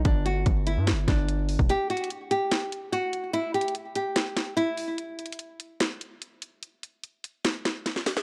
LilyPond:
<<
  \new Staff \with { instrumentName = "Nylon-string guitar" } { \time 4/4 \key g \major \tempo 4 = 146 d'8 fis'8 r8 e'8 r8 d'4. | g'8 fis'8 r8 g'4. fis'4 | e'8 g'8 r8 g'4. e'4 | r1 |
r1 | }
  \new Staff \with { instrumentName = "808-style bass" } { \clef bass \time 4/4 \key g \major g,,4 g,,8. g,16. g,,16. g,,4~ g,,16 e,,16 | r1 | r1 | r1 |
r1 | }
  \new DrumStaff \with { instrumentName = "Drums" } \drummode { \time 4/4 <hh bd>8 hh8 <hh bd>8 hh8 <hh sn>8 <hh bd sn>8 hh8 hho16 bd16 | \tuplet 3/2 { hh16 r16 r16 hh16 hh16 hh16 } hh8 hh8 <hh sn>8 hh8 hh8 hh8 | \tuplet 3/2 { hh16 r16 r16 hh16 hh16 hh16 } hh8 hh8 <hh sn>8 <hh sn>8 hh8 hho8 | \tuplet 3/2 { hh16 r16 r16 hh16 hh16 hh16 } hh8 hh8 <hh sn>8 hh8 hh8 hh8 |
hh8 hh8 hh8 hh8 <hh sn>8 <hh sn>8 <hh sn>16 sn16 <hho sn>16 sn16 | }
>>